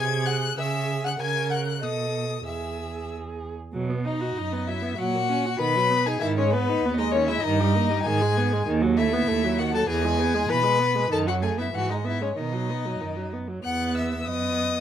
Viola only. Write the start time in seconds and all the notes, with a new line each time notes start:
Already playing: G#4
0.58 G#4
1.20 A#4
1.82 A4
2.46 G#4
3.73 F#3
3.89 B3
4.05 D#4
4.21 F#4
4.37 D#4
4.52 B3
4.68 F#3
4.82 B3
4.98 F#3
5.15 A#3
5.29 C#4
5.45 F#4
5.60 D#3
5.76 F#3
5.91 B3
6.06 D#4
6.22 D#3
6.38 G#3
6.53 B3
6.69 D#4
6.86 B3
6.99 G#3
7.15 D#3
7.29 G#3
7.44 D#3
7.60 G3
7.75 A#3
7.90 G3
8.06 D#3
8.22 G#3
8.37 B3
8.53 G#3
8.68 D#3
8.82 F#3
8.98 A3
9.13 B3
9.28 A3
9.44 F#3
9.60 D#3
9.74 F#3
9.89 E3
10.04 G#3
10.19 B3
10.35 G#3
10.49 E3
10.64 G#3
10.79 B3
10.95 G#3
11.10 D#3
11.27 F#3
11.43 A3
11.58 B3
11.74 E3
11.89 G#3
12.04 B3
12.21 G#3
12.37 D#3
12.53 F#3
12.70 B3
12.85 F#3
13.01 D#3
13.16 F#3
13.33 B3
13.48 F#3
13.64 B3
14.26 B3